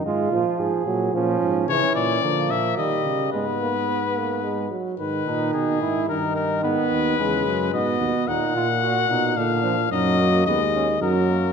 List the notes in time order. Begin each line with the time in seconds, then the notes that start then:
0.04 G#2 G#3 F4
0.32 A#2 F3
0.59 G#2 G#4
0.86 A#2 F#3
1.13 A#2 F3 C#4
1.41 G#2
1.68 C#3 E3 C#4 C#5
1.95 A#2 D5
2.22 D3 F3 A#3
2.50 A#2 E5
2.77 D#3 G3 D#5
3.05 C#3
3.33 G#2 G#3 B3 B4
3.61 A#3
3.89 B3
4.17 A#3
4.44 G#3
4.70 F#3
4.98 G#2 D#3 B4
5.26 A#2 D#4
5.53 B2 G#4
5.81 G#2 E4
6.09 G2 D#3 D#4 A#4
6.36 A#4
6.64 G#2 B3 B4
6.91 D#2
7.18 E2 C#3 G#3
7.46 F#2
7.72 G#2 B2 B3 D#5
8.00 D#2
8.27 D#2 A#2 D#4 F#5
8.55 A#2 F4
8.82 F#4
9.09 B2 D#4
9.36 A#2 D3 D4 F5
9.64 F3
9.90 F#2 F#3 D#4 D#5
10.20 A#3
10.46 D#2 G#3 B3 D#5
10.75 C#4
11.01 F#2 F#3 D#4 A#4
11.31 A#3